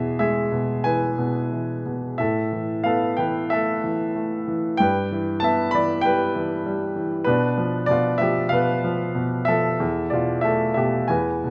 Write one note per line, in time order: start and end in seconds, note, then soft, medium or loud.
0.00 2.16 E2 soft
0.00 0.50 B2 soft
0.00 0.15 G#4 medium
0.00 0.18 E5 medium
0.19 1.48 G#3 soft
0.19 0.81 G#4 medium
0.19 0.87 E5 medium
0.52 1.17 B2 soft
0.84 1.50 E3 soft
0.84 1.82 B4 soft
0.84 1.82 G#5 medium
1.18 1.84 B2 soft
1.52 2.17 E3 soft
1.86 2.18 B2 soft
2.18 4.76 A2 soft
2.18 2.82 A4 soft
2.18 2.81 E5 medium
2.52 3.17 E3 soft
2.84 4.12 B3 soft
2.84 3.16 A4 medium
2.84 3.18 F5 medium
3.17 3.82 E3 soft
3.17 3.49 B4 soft
3.17 3.51 G5 medium
3.50 4.14 A3 soft
3.50 4.77 A4 medium
3.50 4.83 E5 medium
3.84 4.46 E3 soft
4.15 4.78 A3 soft
4.48 4.79 E3 soft
4.77 7.24 G2 medium
4.77 5.39 B4 medium
4.77 5.43 G5 medium
5.12 5.72 E3 soft
5.40 6.62 B3 soft
5.40 5.70 A5 medium
5.44 5.72 E5 medium
5.71 6.34 E3 soft
5.71 6.03 D5 medium
5.71 6.04 B5 medium
6.01 6.64 G3 soft
6.01 7.30 G5 medium
6.06 7.23 B4 medium
6.35 6.94 E3 soft
6.66 7.25 G3 soft
6.96 7.26 E3 soft
7.24 7.87 B2 medium
7.24 7.86 D4 medium
7.24 7.90 B4 medium
7.58 8.19 F3 soft
7.86 8.50 B2 medium
7.86 8.21 D5 medium
7.91 8.20 F4 medium
8.18 8.83 F3 soft
8.18 8.52 E5 medium
8.22 8.51 G4 medium
8.49 9.13 B2 soft
8.49 9.49 F5 medium
8.53 9.45 B4 medium
8.84 9.47 F3 soft
9.15 9.78 B2 soft
9.45 9.79 F3 soft
9.45 10.08 A4 medium
9.45 10.06 E5 medium
9.80 11.05 E2 medium
10.10 10.75 B2 soft
10.10 10.43 F4 soft
10.10 10.44 D5 medium
10.41 11.07 A3 soft
10.41 10.75 A4 soft
10.41 10.73 E5 medium
10.74 11.09 B2 soft
10.74 11.08 G4 soft
10.74 11.06 E5 medium
11.08 11.50 E2 soft
11.08 11.50 B4 soft
11.08 11.50 G#5 medium
11.44 11.50 B2 soft